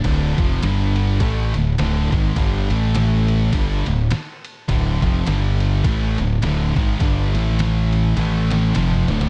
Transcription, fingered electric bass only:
X:1
M:4/4
L:1/8
Q:"Swing" 1/4=103
K:Dm
V:1 name="Fingered electric bass" clef=bass
D,,, F,,, G,,,2 A,,, D,,, D,,, ^G,,, | G,,, A,,,3 G,,, D,,, z2 | D,,, F,,, G,,,2 A,,, D,,, D,,, ^G,,, | G,,, A,,,3 A,,,2 F,,, D,,, |]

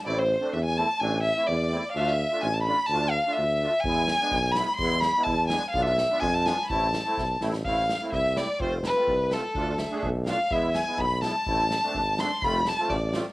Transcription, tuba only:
X:1
M:2/4
L:1/8
Q:1/4=126
K:Am
V:1 name="Tuba" clef=bass
A,,,2 E,,2 | A,,,2 E,,2 | D,,2 A,,,2 | D,,2 D,,2 |
E,,2 B,,,2 | E,,2 E,,2 | B,,,2 F,,2 | A,,,2 B,,, A,,, |
A,,,2 C,,2 | F,,,2 C,,2 | D,,2 B,,,2 | E,,2 B,,,2 |
A,,,2 ^G,,,2 | F,,,2 A,,,2 |]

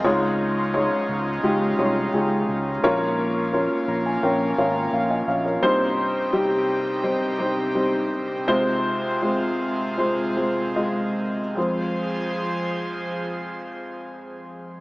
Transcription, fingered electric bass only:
X:1
M:4/4
L:1/16
Q:1/4=85
K:Fm
V:1 name="Fingered electric bass" clef=bass
D,,4- D,, z D,,2 D,,2 C,,2 D,,2 D,,2 | B,,,4- B,,, z B,,,2 B,,,2 A,,,2 B,,,2 B,,,2 | z16 | z16 |
z16 |]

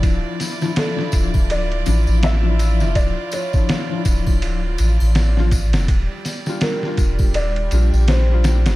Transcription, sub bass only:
X:1
M:4/4
L:1/16
Q:"Swing 16ths" 1/4=82
K:Dm
V:1 name="Sub bass" clef=bass
D,,, z4 z D,,, D,,,3 A,,, A,,,4 F,,, | D,,, z4 z D,,, D,,,3 A,,, A,,,4 F,,, | _E,,, z4 z E,,, E,,,3 B,,, B,,,4 G,,, |]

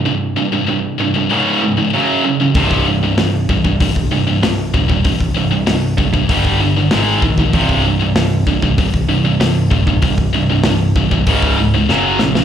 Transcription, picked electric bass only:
X:1
M:4/4
L:1/8
Q:1/4=96
K:Cphr
V:1 name="Picked electric bass" clef=bass
z8 | C,,,2 C,,, C,,, C,,, C,,, C,,, E,,, | C,,, C,,, C,,, ^F,,, G,,,2 A,,, B,,, | C,,,2 C,,, C,,, C,,, C,,, C,,, E,,, |
C,,, C,,, C,,, C,,, D,,,2 ^F,,, B,,, |]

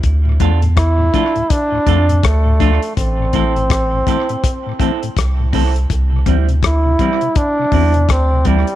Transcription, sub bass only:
X:1
M:4/4
L:1/16
Q:"Swing 16ths" 1/4=82
K:Dm
V:1 name="Sub bass" clef=bass
D,,2 E,,4 z4 F,,2 D,,3 z | A,,,2 A,,,4 z6 C,,4 | C,,2 D,,4 z4 E,,2 D,,3 z |]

